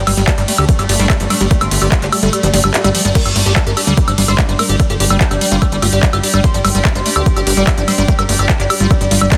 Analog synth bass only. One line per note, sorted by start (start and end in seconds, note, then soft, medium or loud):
0.07 0.13 G1 medium
0.17 0.24 G1 medium
0.38 0.44 G1 medium
0.58 0.65 D2 medium
0.79 0.85 G1 medium
0.89 0.96 G1 loud
1.00 1.06 G1 medium
1.20 1.26 G1 medium
1.41 1.47 G1 medium
1.61 1.68 G1 medium
1.71 1.78 G1 medium
1.82 1.88 G1 medium
2.02 2.09 G1 medium
2.23 2.29 G1 medium
2.43 2.50 G1 medium
2.54 2.60 G1 loud
2.64 2.70 G1 medium
2.84 2.91 G1 medium
3.05 3.11 G1 medium
3.25 3.32 G1 medium
3.36 3.42 G1 medium
3.46 3.52 G1 medium
3.67 3.73 G1 medium
3.87 3.94 D2 medium
4.08 4.14 G1 medium
4.18 4.24 G1 medium
4.28 4.35 G1 medium
4.49 4.55 G1 medium
4.69 4.76 G1 medium
4.90 4.96 G1 medium
5.00 5.07 G1 medium
5.10 5.17 G1 medium
5.31 5.37 G1 medium
5.52 5.58 G1 medium
5.72 5.79 G1 medium
5.82 5.89 G1 medium
5.93 5.99 G1 medium
6.13 6.20 G1 medium
6.34 6.40 G1 medium
6.54 6.61 G1 medium
6.65 6.71 G1 loud
6.75 6.81 G1 medium
6.95 7.02 G1 medium
7.16 7.22 D2 medium
7.36 7.43 G1 medium
7.47 7.53 G1 medium
7.57 7.63 G1 medium
7.78 7.84 G1 medium
7.98 8.05 G1 medium
8.19 8.25 G1 medium
8.29 8.35 G1 medium
8.39 8.46 G1 medium
8.60 8.66 G1 medium
8.80 8.87 G1 medium
9.01 9.07 G1 medium
9.11 9.18 G1 medium
9.21 9.28 G1 medium